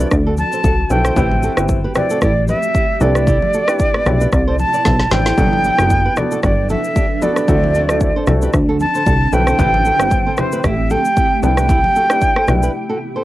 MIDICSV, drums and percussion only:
0, 0, Header, 1, 2, 480
1, 0, Start_track
1, 0, Tempo, 526316
1, 1064, Time_signature, 4, 2, 24, 8
1, 12075, End_track
2, 0, Start_track
2, 0, Title_t, "Drums"
2, 0, Note_on_c, 9, 82, 76
2, 87, Note_off_c, 9, 82, 0
2, 102, Note_on_c, 9, 82, 66
2, 105, Note_on_c, 9, 36, 111
2, 105, Note_on_c, 9, 37, 87
2, 194, Note_off_c, 9, 82, 0
2, 196, Note_off_c, 9, 36, 0
2, 196, Note_off_c, 9, 37, 0
2, 341, Note_on_c, 9, 82, 46
2, 350, Note_on_c, 9, 63, 76
2, 432, Note_off_c, 9, 82, 0
2, 441, Note_off_c, 9, 63, 0
2, 478, Note_on_c, 9, 82, 62
2, 569, Note_off_c, 9, 82, 0
2, 586, Note_on_c, 9, 36, 98
2, 586, Note_on_c, 9, 82, 78
2, 677, Note_off_c, 9, 82, 0
2, 678, Note_off_c, 9, 36, 0
2, 822, Note_on_c, 9, 82, 60
2, 826, Note_on_c, 9, 63, 77
2, 914, Note_off_c, 9, 82, 0
2, 917, Note_off_c, 9, 63, 0
2, 956, Note_on_c, 9, 37, 86
2, 959, Note_on_c, 9, 82, 82
2, 1047, Note_off_c, 9, 37, 0
2, 1050, Note_off_c, 9, 82, 0
2, 1063, Note_on_c, 9, 36, 118
2, 1064, Note_on_c, 9, 82, 78
2, 1070, Note_on_c, 9, 64, 82
2, 1154, Note_off_c, 9, 36, 0
2, 1155, Note_off_c, 9, 82, 0
2, 1161, Note_off_c, 9, 64, 0
2, 1200, Note_on_c, 9, 63, 77
2, 1292, Note_off_c, 9, 63, 0
2, 1302, Note_on_c, 9, 82, 57
2, 1394, Note_off_c, 9, 82, 0
2, 1434, Note_on_c, 9, 37, 97
2, 1438, Note_on_c, 9, 82, 82
2, 1525, Note_off_c, 9, 37, 0
2, 1530, Note_off_c, 9, 82, 0
2, 1538, Note_on_c, 9, 82, 82
2, 1542, Note_on_c, 9, 36, 95
2, 1629, Note_off_c, 9, 82, 0
2, 1634, Note_off_c, 9, 36, 0
2, 1778, Note_on_c, 9, 82, 55
2, 1785, Note_on_c, 9, 37, 86
2, 1795, Note_on_c, 9, 63, 78
2, 1795, Note_on_c, 9, 64, 79
2, 1870, Note_off_c, 9, 82, 0
2, 1876, Note_off_c, 9, 37, 0
2, 1887, Note_off_c, 9, 63, 0
2, 1887, Note_off_c, 9, 64, 0
2, 1915, Note_on_c, 9, 82, 78
2, 2007, Note_off_c, 9, 82, 0
2, 2022, Note_on_c, 9, 82, 65
2, 2024, Note_on_c, 9, 37, 94
2, 2025, Note_on_c, 9, 36, 112
2, 2113, Note_off_c, 9, 82, 0
2, 2116, Note_off_c, 9, 36, 0
2, 2116, Note_off_c, 9, 37, 0
2, 2261, Note_on_c, 9, 82, 47
2, 2270, Note_on_c, 9, 63, 76
2, 2353, Note_off_c, 9, 82, 0
2, 2362, Note_off_c, 9, 63, 0
2, 2397, Note_on_c, 9, 82, 59
2, 2489, Note_off_c, 9, 82, 0
2, 2506, Note_on_c, 9, 36, 97
2, 2506, Note_on_c, 9, 82, 77
2, 2597, Note_off_c, 9, 36, 0
2, 2597, Note_off_c, 9, 82, 0
2, 2741, Note_on_c, 9, 82, 57
2, 2746, Note_on_c, 9, 63, 77
2, 2833, Note_off_c, 9, 82, 0
2, 2837, Note_off_c, 9, 63, 0
2, 2875, Note_on_c, 9, 37, 83
2, 2878, Note_on_c, 9, 82, 80
2, 2966, Note_off_c, 9, 37, 0
2, 2969, Note_off_c, 9, 82, 0
2, 2983, Note_on_c, 9, 36, 115
2, 2983, Note_on_c, 9, 82, 82
2, 2991, Note_on_c, 9, 64, 75
2, 3074, Note_off_c, 9, 36, 0
2, 3074, Note_off_c, 9, 82, 0
2, 3082, Note_off_c, 9, 64, 0
2, 3122, Note_on_c, 9, 63, 83
2, 3213, Note_off_c, 9, 63, 0
2, 3222, Note_on_c, 9, 82, 59
2, 3313, Note_off_c, 9, 82, 0
2, 3354, Note_on_c, 9, 37, 99
2, 3358, Note_on_c, 9, 82, 79
2, 3445, Note_off_c, 9, 37, 0
2, 3449, Note_off_c, 9, 82, 0
2, 3458, Note_on_c, 9, 82, 79
2, 3462, Note_on_c, 9, 36, 97
2, 3549, Note_off_c, 9, 82, 0
2, 3554, Note_off_c, 9, 36, 0
2, 3596, Note_on_c, 9, 37, 94
2, 3687, Note_off_c, 9, 37, 0
2, 3700, Note_on_c, 9, 82, 52
2, 3706, Note_on_c, 9, 37, 80
2, 3715, Note_on_c, 9, 63, 73
2, 3715, Note_on_c, 9, 64, 78
2, 3791, Note_off_c, 9, 82, 0
2, 3798, Note_off_c, 9, 37, 0
2, 3806, Note_off_c, 9, 63, 0
2, 3806, Note_off_c, 9, 64, 0
2, 3837, Note_on_c, 9, 82, 75
2, 3928, Note_off_c, 9, 82, 0
2, 3943, Note_on_c, 9, 82, 64
2, 3945, Note_on_c, 9, 36, 107
2, 3945, Note_on_c, 9, 37, 88
2, 4034, Note_off_c, 9, 82, 0
2, 4037, Note_off_c, 9, 36, 0
2, 4037, Note_off_c, 9, 37, 0
2, 4183, Note_on_c, 9, 82, 45
2, 4191, Note_on_c, 9, 63, 71
2, 4274, Note_off_c, 9, 82, 0
2, 4282, Note_off_c, 9, 63, 0
2, 4318, Note_on_c, 9, 82, 60
2, 4409, Note_off_c, 9, 82, 0
2, 4424, Note_on_c, 9, 38, 55
2, 4427, Note_on_c, 9, 36, 99
2, 4427, Note_on_c, 9, 82, 79
2, 4434, Note_on_c, 9, 64, 78
2, 4515, Note_off_c, 9, 38, 0
2, 4518, Note_off_c, 9, 36, 0
2, 4518, Note_off_c, 9, 82, 0
2, 4525, Note_off_c, 9, 64, 0
2, 4556, Note_on_c, 9, 38, 61
2, 4647, Note_off_c, 9, 38, 0
2, 4662, Note_on_c, 9, 82, 57
2, 4664, Note_on_c, 9, 38, 87
2, 4667, Note_on_c, 9, 63, 83
2, 4753, Note_off_c, 9, 82, 0
2, 4755, Note_off_c, 9, 38, 0
2, 4758, Note_off_c, 9, 63, 0
2, 4796, Note_on_c, 9, 38, 89
2, 4799, Note_on_c, 9, 82, 80
2, 4887, Note_off_c, 9, 38, 0
2, 4890, Note_off_c, 9, 82, 0
2, 4904, Note_on_c, 9, 36, 116
2, 4904, Note_on_c, 9, 82, 77
2, 4912, Note_on_c, 9, 64, 81
2, 4995, Note_off_c, 9, 36, 0
2, 4996, Note_off_c, 9, 82, 0
2, 5004, Note_off_c, 9, 64, 0
2, 5042, Note_on_c, 9, 63, 79
2, 5133, Note_off_c, 9, 63, 0
2, 5143, Note_on_c, 9, 82, 56
2, 5235, Note_off_c, 9, 82, 0
2, 5275, Note_on_c, 9, 37, 95
2, 5279, Note_on_c, 9, 82, 84
2, 5366, Note_off_c, 9, 37, 0
2, 5370, Note_off_c, 9, 82, 0
2, 5379, Note_on_c, 9, 82, 82
2, 5383, Note_on_c, 9, 36, 91
2, 5470, Note_off_c, 9, 82, 0
2, 5474, Note_off_c, 9, 36, 0
2, 5620, Note_on_c, 9, 82, 53
2, 5627, Note_on_c, 9, 37, 84
2, 5636, Note_on_c, 9, 63, 78
2, 5636, Note_on_c, 9, 64, 75
2, 5712, Note_off_c, 9, 82, 0
2, 5718, Note_off_c, 9, 37, 0
2, 5728, Note_off_c, 9, 63, 0
2, 5728, Note_off_c, 9, 64, 0
2, 5757, Note_on_c, 9, 82, 79
2, 5848, Note_off_c, 9, 82, 0
2, 5863, Note_on_c, 9, 82, 61
2, 5866, Note_on_c, 9, 36, 110
2, 5866, Note_on_c, 9, 37, 87
2, 5955, Note_off_c, 9, 82, 0
2, 5957, Note_off_c, 9, 36, 0
2, 5957, Note_off_c, 9, 37, 0
2, 6103, Note_on_c, 9, 82, 45
2, 6112, Note_on_c, 9, 63, 72
2, 6194, Note_off_c, 9, 82, 0
2, 6203, Note_off_c, 9, 63, 0
2, 6239, Note_on_c, 9, 82, 58
2, 6330, Note_off_c, 9, 82, 0
2, 6347, Note_on_c, 9, 36, 101
2, 6347, Note_on_c, 9, 82, 76
2, 6439, Note_off_c, 9, 36, 0
2, 6439, Note_off_c, 9, 82, 0
2, 6583, Note_on_c, 9, 82, 57
2, 6588, Note_on_c, 9, 63, 79
2, 6674, Note_off_c, 9, 82, 0
2, 6679, Note_off_c, 9, 63, 0
2, 6716, Note_on_c, 9, 37, 86
2, 6719, Note_on_c, 9, 82, 79
2, 6807, Note_off_c, 9, 37, 0
2, 6810, Note_off_c, 9, 82, 0
2, 6824, Note_on_c, 9, 36, 117
2, 6824, Note_on_c, 9, 82, 81
2, 6832, Note_on_c, 9, 64, 76
2, 6915, Note_off_c, 9, 36, 0
2, 6915, Note_off_c, 9, 82, 0
2, 6924, Note_off_c, 9, 64, 0
2, 6963, Note_on_c, 9, 63, 80
2, 7054, Note_off_c, 9, 63, 0
2, 7064, Note_on_c, 9, 82, 55
2, 7155, Note_off_c, 9, 82, 0
2, 7195, Note_on_c, 9, 37, 96
2, 7199, Note_on_c, 9, 82, 82
2, 7286, Note_off_c, 9, 37, 0
2, 7291, Note_off_c, 9, 82, 0
2, 7298, Note_on_c, 9, 82, 76
2, 7303, Note_on_c, 9, 36, 97
2, 7390, Note_off_c, 9, 82, 0
2, 7394, Note_off_c, 9, 36, 0
2, 7539, Note_on_c, 9, 82, 53
2, 7546, Note_on_c, 9, 37, 86
2, 7556, Note_on_c, 9, 63, 77
2, 7556, Note_on_c, 9, 64, 79
2, 7630, Note_off_c, 9, 82, 0
2, 7637, Note_off_c, 9, 37, 0
2, 7647, Note_off_c, 9, 63, 0
2, 7647, Note_off_c, 9, 64, 0
2, 7676, Note_on_c, 9, 82, 74
2, 7768, Note_off_c, 9, 82, 0
2, 7783, Note_on_c, 9, 82, 64
2, 7785, Note_on_c, 9, 37, 90
2, 7786, Note_on_c, 9, 36, 104
2, 7874, Note_off_c, 9, 82, 0
2, 7876, Note_off_c, 9, 37, 0
2, 7877, Note_off_c, 9, 36, 0
2, 8023, Note_on_c, 9, 82, 46
2, 8031, Note_on_c, 9, 63, 71
2, 8114, Note_off_c, 9, 82, 0
2, 8123, Note_off_c, 9, 63, 0
2, 8158, Note_on_c, 9, 82, 60
2, 8250, Note_off_c, 9, 82, 0
2, 8267, Note_on_c, 9, 36, 96
2, 8267, Note_on_c, 9, 82, 77
2, 8358, Note_off_c, 9, 36, 0
2, 8358, Note_off_c, 9, 82, 0
2, 8503, Note_on_c, 9, 82, 57
2, 8507, Note_on_c, 9, 63, 78
2, 8594, Note_off_c, 9, 82, 0
2, 8598, Note_off_c, 9, 63, 0
2, 8636, Note_on_c, 9, 37, 85
2, 8639, Note_on_c, 9, 82, 79
2, 8727, Note_off_c, 9, 37, 0
2, 8730, Note_off_c, 9, 82, 0
2, 8744, Note_on_c, 9, 36, 122
2, 8745, Note_on_c, 9, 82, 79
2, 8751, Note_on_c, 9, 64, 79
2, 8835, Note_off_c, 9, 36, 0
2, 8836, Note_off_c, 9, 82, 0
2, 8843, Note_off_c, 9, 64, 0
2, 8882, Note_on_c, 9, 63, 78
2, 8973, Note_off_c, 9, 63, 0
2, 8983, Note_on_c, 9, 82, 56
2, 9075, Note_off_c, 9, 82, 0
2, 9116, Note_on_c, 9, 37, 96
2, 9120, Note_on_c, 9, 82, 84
2, 9207, Note_off_c, 9, 37, 0
2, 9211, Note_off_c, 9, 82, 0
2, 9219, Note_on_c, 9, 82, 80
2, 9223, Note_on_c, 9, 36, 93
2, 9310, Note_off_c, 9, 82, 0
2, 9314, Note_off_c, 9, 36, 0
2, 9459, Note_on_c, 9, 82, 54
2, 9466, Note_on_c, 9, 37, 81
2, 9476, Note_on_c, 9, 63, 77
2, 9476, Note_on_c, 9, 64, 77
2, 9551, Note_off_c, 9, 82, 0
2, 9557, Note_off_c, 9, 37, 0
2, 9567, Note_off_c, 9, 63, 0
2, 9567, Note_off_c, 9, 64, 0
2, 9596, Note_on_c, 9, 82, 76
2, 9687, Note_off_c, 9, 82, 0
2, 9703, Note_on_c, 9, 82, 63
2, 9705, Note_on_c, 9, 36, 111
2, 9705, Note_on_c, 9, 37, 89
2, 9794, Note_off_c, 9, 82, 0
2, 9797, Note_off_c, 9, 36, 0
2, 9797, Note_off_c, 9, 37, 0
2, 9942, Note_on_c, 9, 82, 45
2, 9950, Note_on_c, 9, 63, 75
2, 10033, Note_off_c, 9, 82, 0
2, 10041, Note_off_c, 9, 63, 0
2, 10078, Note_on_c, 9, 82, 61
2, 10169, Note_off_c, 9, 82, 0
2, 10186, Note_on_c, 9, 36, 99
2, 10186, Note_on_c, 9, 82, 75
2, 10277, Note_off_c, 9, 82, 0
2, 10278, Note_off_c, 9, 36, 0
2, 10422, Note_on_c, 9, 82, 59
2, 10426, Note_on_c, 9, 63, 84
2, 10513, Note_off_c, 9, 82, 0
2, 10517, Note_off_c, 9, 63, 0
2, 10555, Note_on_c, 9, 37, 86
2, 10558, Note_on_c, 9, 82, 80
2, 10647, Note_off_c, 9, 37, 0
2, 10650, Note_off_c, 9, 82, 0
2, 10663, Note_on_c, 9, 36, 113
2, 10664, Note_on_c, 9, 82, 77
2, 10671, Note_on_c, 9, 64, 79
2, 10755, Note_off_c, 9, 36, 0
2, 10755, Note_off_c, 9, 82, 0
2, 10762, Note_off_c, 9, 64, 0
2, 10800, Note_on_c, 9, 63, 81
2, 10891, Note_off_c, 9, 63, 0
2, 10904, Note_on_c, 9, 82, 57
2, 10995, Note_off_c, 9, 82, 0
2, 11035, Note_on_c, 9, 37, 99
2, 11040, Note_on_c, 9, 82, 80
2, 11126, Note_off_c, 9, 37, 0
2, 11131, Note_off_c, 9, 82, 0
2, 11139, Note_on_c, 9, 82, 79
2, 11143, Note_on_c, 9, 36, 94
2, 11230, Note_off_c, 9, 82, 0
2, 11234, Note_off_c, 9, 36, 0
2, 11277, Note_on_c, 9, 37, 93
2, 11368, Note_off_c, 9, 37, 0
2, 11380, Note_on_c, 9, 82, 54
2, 11386, Note_on_c, 9, 37, 85
2, 11395, Note_on_c, 9, 63, 73
2, 11395, Note_on_c, 9, 64, 75
2, 11471, Note_off_c, 9, 82, 0
2, 11477, Note_off_c, 9, 37, 0
2, 11486, Note_off_c, 9, 63, 0
2, 11486, Note_off_c, 9, 64, 0
2, 11516, Note_on_c, 9, 82, 77
2, 11608, Note_off_c, 9, 82, 0
2, 12075, End_track
0, 0, End_of_file